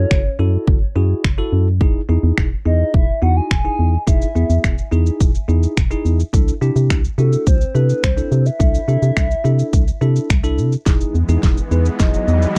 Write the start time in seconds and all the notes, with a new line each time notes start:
Already playing: E4 F#4 A4 C#5
0.11 F#1, finger snap, kick
0.39 F#2 E4 F#4 A4
0.67 F#1, kick
0.96 F#2 E4 F#4 G#4
1.24 F#1, finger snap, kick
1.38 E4 F#4 A4
1.53 F#2
1.81 E1 D#4 E4 G#4, kick
2.09 E2 D#4 E4 G#4
2.23 E2
2.38 E1, finger snap, kick
2.65 E2 D#4 E4 G#4 D#5
2.94 E1 E5, kick
3.22 E2 D#4 E4 F#4 F#5
3.37 G#5
3.51 E1 G#5, finger snap, kick
3.65 D#4 E4 G#4
3.79 E2
4.07 E1 D#4 E4 G#4 E5, kick, shaker
4.22 shaker
4.35 E2 B3 E4 G#4, shaker
4.50 E2, shaker
4.64 E1, finger snap, kick, shaker
4.78 shaker
4.91 E2 D#4 E4 G#4, shaker
5.06 shaker
5.20 E1, kick, shaker
5.35 shaker
5.48 E2 D#4 E4 G#4, shaker
5.63 shaker
5.77 E1, finger snap, kick, shaker
5.91 D#4 E4 G#4, shaker
6.05 E2, shaker
6.20 shaker
6.33 C2 D4 E4 A4, kick, shaker
6.48 shaker
6.61 C3 D4 E4 G4, shaker
6.76 C3, shaker
6.90 C2, finger snap, kick, shaker
7.05 shaker
7.18 C3 D4 E4 F#4 A4, shaker
7.33 shaker
7.47 C2 C5, kick, shaker
7.61 shaker
7.75 C3 D4 E4 A4 B4, shaker
7.89 shaker
8.03 C2 C5, finger snap, kick, shaker
8.17 D4 E4 A4, shaker
8.32 C3, shaker
8.46 E5, shaker
8.59 C2 D4 E4 A4, kick, shaker
8.75 shaker
8.88 C3 D4 E4 A4, shaker
9.02 C3, shaker
9.17 C2, finger snap, kick, shaker
9.31 shaker
9.44 C3 D4 E4 A4, shaker
9.59 shaker
9.73 C2, kick, shaker
9.88 shaker
10.01 C3 D4 E4 A4, shaker
10.16 shaker
10.30 C2, finger snap, kick, shaker
10.43 D4 E4 A4, shaker
10.58 C3, shaker
10.72 shaker
10.86 E1 E3 G#3 B3 D#4 E4 G#4, kick, snare, riser, shaker
11.01 shaker
11.15 E2, shaker
11.29 E2 D#4 E4 G#4, shaker
11.43 E1, kick, snare, shaker
11.57 shaker
11.71 E2 D#4 E4 G#4 B4, shaker
11.85 shaker
11.99 E1 D#4 E4 G#4 D#5, kick, snare, shaker
12.14 shaker
12.28 E2, shaker
12.42 shaker